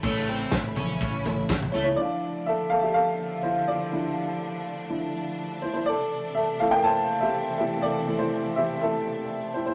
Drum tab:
CC |x---------------|----------------|----------------|----------------|
HH |--x-x-x-x-x-x-x-|----------------|----------------|----------------|
SD |-o--o-------o---|----------------|----------------|----------------|
FT |------o---o--o--|----------------|----------------|----------------|
BD |o---o---o---o---|----------------|----------------|----------------|

CC |----------------|
HH |----------------|
SD |----------------|
FT |----------------|
BD |----------------|